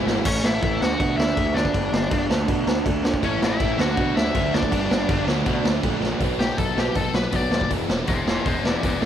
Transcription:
Already playing: G#2 E3 G#3 B3 E4
0.06 G#1 E2 B2 E3, snare
0.25 A1 A2 E3 A3 C#4 C#5, kick, crash
0.44 A1 E4 E5, snare
0.62 A1 A2 E3 A3, kick, crash
0.81 D2 D3 A3 D4 F#4 F#5, snare
0.99 B2 D3 A3 D4, kick, crash
1.17 D2 E4 E5, snare
1.37 D2 D3 A3 D4, kick, crash
1.54 D3 A3 D4 D5, snare
1.65 kick
1.73 G1 G2 D3 G3, kick, crash
1.92 G1, snare
2.10 G1 G2 D3 G3, kick, crash
2.29 D2 D3 A3 D4, snare
2.47 B2 D3 A3 D4, kick, crash
2.67 D2, snare
2.84 D2 D3 A3 D4, kick, crash
3.04 D3 A3 D4, snare
3.14 kick
3.22 A1 A2 E3 A3 C#4 E4 C#5, kick, crash
3.41 A1 E4 E5, snare
3.59 A1 A2 E3 A3, kick, crash
3.78 D2 D3 F#3 A3 D4 F#4 F#5, snare
3.96 B2 D3 A3 D4, kick, crash
4.15 D2 E4 E5, snare
4.34 D2 D3 A3 D4, kick, crash
4.53 D3 A3 D4 D5, snare
4.63 kick
4.71 G1 G2 D3 G3 B3 D4, kick, crash
4.90 G1, snare
5.09 G1 G2 D3 G3, kick, crash
5.26 D2 D3 F#3 A3 D4, snare
5.46 B2 D3 A3 D4, kick, crash
5.64 D2, snare
5.83 A#1 D3 A3 D4, kick, crash
6.02 D3 A3 D4, snare
6.20 B1 B2 F#3 B3 D4, kick, open hi-hat
6.39 B1 B2 F#3 B3 D4 G4, snare
6.57 B1 B2 F#3 B3 D4 A4, kick, open hi-hat
6.76 B1 B2 F#3 B3 D4 G4, snare
6.95 B1 B2 F#3 B3 D4 A4, kick, open hi-hat
7.14 B1 B2 F#3 B3 D4 B4, snare
7.32 B1 B2 F#3 B3 D4 D5, kick, open hi-hat
7.51 D#2 B2 F#3 B3 D4, snare
7.61 kick
7.70 E1 E2 B2 E3 G#3 B3 E4, kick, open hi-hat
7.89 E1 E2 B2 E3 G#3 B3 E4, snare
8.07 E1 E2 B2 E3 G#3 B3 E4 G#4 C5, kick, open hi-hat
8.26 E1 E2 B2 E3 G#3 B3 E4 G#4 C5, snare
8.45 E1 E2 B2 E3 G#3 B3 E4 G#4 C5, kick, open hi-hat
8.63 E1 E2 B2 E3 G#3 B3 E4 B4 D5, snare
8.83 E1 E2 B2 E3 G#3 B3 E4 B4 D5, kick, open hi-hat
9.01 A1 A2 E3 A3 A4 D5, snare

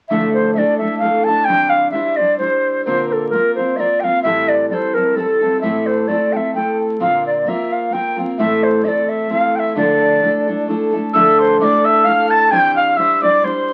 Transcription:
0.09 D3 F3 A3 D4 E4 A4 E5
0.34 C5
0.54 A3 D4 E5
0.58 E4 A4 D5
0.78 D4 E4 A4 E5
0.83 A3
0.98 A3 F5
1.03 D4 E4 A4
1.24 E4 A4 A5
1.28 A3 D4
1.45 C3 E3 G3 G5
1.49 D4 E4 C5
1.70 F5
1.91 G3 D4 E4 E5
1.96 C5
2.16 D4 E4 C5 D5
2.21 G3
2.38 G3 D4 E4 C5
2.85 A#2 D3 A#3 C4 F4 A#4 C5
3.09 A4 C5
3.30 A#3 C4 F4 A#4
3.35 A#4
3.55 F4 A#4 C5
3.59 A#3 C4
3.76 A#3 C4 F4 A#4 D5 E5
4.00 F4 A#4 F5 G5
4.05 A#3 C4
4.23 A2 E3 G3 C4 E4 A4 E5
4.49 D5
4.69 G3 C4 E4 A4 D5
4.74 C5
4.94 G3 C4 E4 A4 A#4
5.16 G3 C4 E4 A4
5.41 G3 C4 E4 A4
5.61 A2 E3 A3 C4 E4 A4 E5
5.86 C5
6.08 A3 C4 E4 A4 D5
6.33 A3 C4 E4 A4 G5
6.37 E5
6.54 A3 C4 E4 A4 G5
7.00 A#2 D3 A#3 C4 F4 A#4 F5
7.27 D5
7.46 A#3 C4 F4 A#4 E5
7.72 F5
7.92 A#3 C4 F4 A#4 G5
8.16 A#3 C4 F4 A#4
8.38 A2 E3 A3 C4 E4 A4 E5
8.63 C5
8.83 A3 C4 E4 A4 E5
8.88 D5
9.09 E5
9.29 A3 C4 E4 A4 F5
9.55 E5 G5
9.75 D3 F3 A3 D4 E4 A4 D5
10.22 A3 D4 E4 A4
10.47 A3 D4 E4 A4
10.68 A3 D4 E4 A4
10.92 A3 D4 E4 A4
11.13 D3 F3 A3 D4 E4 A4 E5 E6
11.39 C5 C6
11.60 A3 D4 E4 A4 D5 E5 D6
11.85 E5 E6
12.04 A3 D4 E4 A4 F5 F6
12.29 A5 A6
12.51 C3 E3 G3 D4 E4 C5 G5 G6
12.76 F5 F6
12.92 F6
12.96 G3 D4 E4 C5 E5 E6
13.22 G3 D4 E4 C5 D5 D6
13.44 G3 D4 E4 C5 C6

